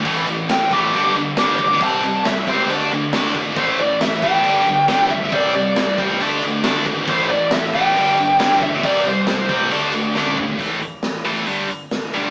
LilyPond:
<<
  \new Staff \with { instrumentName = "Lead electric guitar" } { \time 4/4 \key a \minor \tempo 4 = 137 r4 g''8 d'''4 r8 d'''4 | a''4 e''8 c''8 r2 | c''8 d''8 e''8 g''2 e''8 | d''8 d''4 r2 r8 |
c''8 d''8 e''8 g''2 e''8 | d''8 c''4 r2 r8 | r1 | }
  \new Staff \with { instrumentName = "Distorted electric guitar" } { \clef bass \time 4/4 \key a \minor <a, e a>8 <a, e>8 <a, e>8 <a, e a>8 <g, d g>8 <g, d>8 <g, d g>8 <g, d>8 | <c g c'>8 <c g>8 <c g>8 <c g c'>8 <d a d'>8 <d a>8 <d a d'>8 <d a>8 | <a, e a>8 <a, e>8 <a, e>8 <a, e a>8 <g, d g>8 <g, d>8 <g, d g>8 <g, d>8 | <c g c'>8 <c g>8 <c g>8 <c g c'>8 <d a d'>8 <d a>8 <d a d'>8 <d a>8 |
<a, e a>8 <a, e>8 <a, e>8 <a, e a>8 <g, d g>8 <g, d>8 <g, d g>8 <g, d>8 | <c g c'>8 <c g>8 <c g>8 <c g c'>8 <d a d'>8 <d a>8 <d a d'>8 <d a>8 | <a, e a>8 r4 <a, e a>8 <g, d g>8 r4 <g, d g>8 | }
  \new Staff \with { instrumentName = "Picked electric bass" } { \clef bass \time 4/4 \key a \minor a,,8 a,,8 a,,8 a,,8 g,,8 g,,8 g,,8 e,,8 | c,8 c,8 c,8 cis,8 d,8 d,8 d,8 gis,,8 | a,,8 a,,8 a,,8 a,,8 g,,8 g,,8 g,,8 b,,8 | c,8 c,8 c,8 c,8 d,8 d,8 d,8 gis,,8 |
a,,8 a,,8 a,,8 a,,8 g,,8 g,,8 g,,8 e,,8 | c,8 c,8 c,8 c,8 d,8 d,8 d,8 c,8 | a,,4 a,,8 a,,8 g,,8 g,,8 g,,8 b,,8 | }
  \new DrumStaff \with { instrumentName = "Drums" } \drummode { \time 4/4 <cymc bd>8 cymc8 <cymc sn>8 <cymc bd>8 cymc8 cymc8 <cymc sn>8 <cymc bd>8 | <cymc bd>8 cymc8 <cymc sn>8 <cymc bd>8 cymc8 cymc8 <cymc sn>8 <cymc bd>8 | <cymc bd>8 cymc8 <cymc sn>8 <cymc bd>8 cymc8 cymc8 <cymc sn>8 <cymc bd>8 | <cymc bd>8 cymc8 <cymc sn>8 <cymc bd>8 cymc8 cymc8 <cymc sn>8 <cymc bd>8 |
<cymc bd>8 cymc8 <cymc sn>8 <cymc bd>8 cymc8 cymc8 <cymc sn>8 <cymc bd>8 | <cymc bd>8 cymc8 <cymc sn>8 <cymc bd>8 cymc8 cymc8 sn16 tommh16 toml16 tomfh16 | <hho bd>8 hho8 <hho sn>8 hho8 hho8 hho8 <hho sn>8 hho8 | }
>>